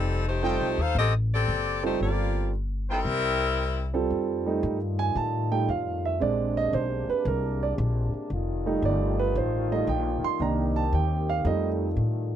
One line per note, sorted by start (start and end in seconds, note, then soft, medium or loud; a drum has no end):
0.00 0.56 F1 medium
0.00 0.24 G3 medium
0.00 0.24 C4 medium
0.00 0.24 D#4 medium
0.00 0.24 A4 medium
0.28 0.80 A3 medium
0.28 0.80 D#4 medium
0.28 0.80 G4 medium
0.28 0.80 C5 loud
0.43 0.75 G3 medium
0.43 0.75 C4 medium
0.43 0.75 F4 medium
0.43 0.67 F4 medium
0.43 0.75 A4 medium
0.43 0.67 A4 medium
0.43 0.67 D#5 medium
0.43 0.67 G5 medium
0.60 0.77 C2 medium
0.77 0.94 D#2 medium
0.77 0.97 D#4 medium
0.77 0.97 A4 medium
0.77 0.97 C5 medium
0.77 0.96 F5 loud
0.95 1.44 A1 loud
0.95 1.13 C4 medium
0.95 1.13 G4 medium
0.95 1.14 A4 medium
0.95 1.13 D#5 loud
1.34 1.82 C4 medium
1.34 1.81 G4 medium
1.34 1.81 A4 medium
1.34 1.81 D5 medium
1.48 1.97 F#1 medium
1.83 2.49 G3 medium
1.83 2.00 A3 medium
1.83 2.49 C4 medium
1.83 2.00 D#4 medium
1.83 2.50 F4 medium
1.83 2.00 G4 medium
1.83 2.50 A4 medium
1.83 2.00 C5 medium
2.01 3.02 G1 medium
2.01 2.50 A#3 medium
2.01 2.51 F4 medium
2.01 2.51 G4 medium
2.01 2.50 D5 medium
2.89 3.91 G3 loud
2.89 3.91 C4 loud
2.89 3.00 E4 medium
2.89 3.91 E4 loud
2.89 3.00 A#4 medium
2.89 3.91 A#4 loud
2.89 3.00 C5 medium
2.89 3.00 G5 medium
3.05 4.06 C2 medium
3.94 4.45 G3 medium
3.94 4.60 C4 medium
3.94 4.60 F4 medium
3.94 4.60 A4 medium
4.10 4.61 F2 medium
4.10 6.19 D#3 medium
4.10 6.18 G3 medium
4.10 6.19 A3 medium
4.10 6.18 F4 medium
4.46 4.76 G3 soft
4.46 4.76 A3 soft
4.46 4.76 D#4 medium
4.63 5.14 G2 medium
4.99 5.15 G#5 medium
5.15 5.66 A2 medium
5.15 5.51 A5 medium
5.51 5.66 G3 soft
5.51 5.66 A3 soft
5.51 5.67 D#4 soft
5.51 5.68 G5 medium
5.69 6.19 F2 medium
5.69 6.04 F5 medium
6.05 6.21 E5 medium
6.20 6.72 A#1 medium
6.20 8.28 C3 medium
6.20 7.05 G#3 soft
6.20 8.28 G#3 medium
6.20 8.28 A#3 medium
6.20 7.05 C4 soft
6.20 8.28 D4 medium
6.20 7.05 D4 medium
6.20 6.56 D5 medium
6.57 6.73 D#5 medium
6.73 7.06 B1 medium
6.73 7.08 C5 medium
7.08 7.25 B4 medium
7.08 muted upright bass stroke soft
7.25 7.76 C2 loud
7.25 7.61 A#4 medium
7.63 7.72 D5 medium
7.78 8.11 A#1 loud
8.14 muted upright bass stroke soft
8.30 8.81 F1 medium
8.30 11.42 D#3 medium
8.30 10.39 G3 medium
8.30 10.39 A3 medium
8.30 10.39 F4 medium
8.66 9.32 G3 medium
8.66 9.32 A3 soft
8.66 9.32 D#4 medium
8.82 9.33 G1 medium
8.82 9.19 D5 medium
9.19 9.35 B4 medium
9.35 9.86 A1 medium
9.35 9.71 C5 medium
9.71 9.86 G3 soft
9.71 9.86 A3 soft
9.71 9.87 D#4 soft
9.71 9.88 D#5 medium
9.87 10.21 A#1 medium
9.87 10.23 G5 medium
10.24 10.40 C6 medium
10.24 muted upright bass stroke soft
10.40 10.91 C2 medium
10.40 10.80 D#3 soft
10.40 10.81 A#3 soft
10.40 11.44 A#3 medium
10.40 11.44 C4 medium
10.40 10.81 D4 medium
10.40 11.44 G4 medium
10.40 10.76 A#5 medium
10.76 10.92 A5 medium
10.93 11.43 D#2 medium
10.93 11.28 G5 medium
11.29 11.45 F5 medium
11.45 11.96 F2 loud
11.45 12.36 D#3 medium
11.45 11.85 G3 soft
11.45 12.36 G3 medium
11.45 12.36 A3 medium
11.45 11.85 A3 soft
11.45 11.86 D#4 soft
11.45 12.36 F4 medium
11.45 11.68 D#5 medium
11.97 12.36 A2 medium